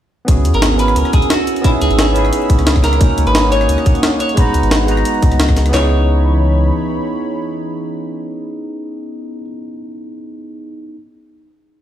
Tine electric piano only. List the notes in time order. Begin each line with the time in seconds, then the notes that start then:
0.25 B3 C#4 E4
0.30 F#4 G#4
0.76 B3 C#4 E4
0.81 F#4 A#4
1.61 B3 C#4 D#4
1.66 E4 G#4
2.13 B3 C#4 D#4
2.17 E4 G#4
2.98 A#3 C#4 D#4
3.02 F#4 A#4
3.49 A#3 C#4 D#4
3.54 F#4 C#5
4.34 G#3 B3 D#4
4.39 F#4 A#5
4.85 G#3 B3 D#4
4.90 F#4 A#5
5.69 B3 C#4
5.74 D#4 E4
5.78 G#4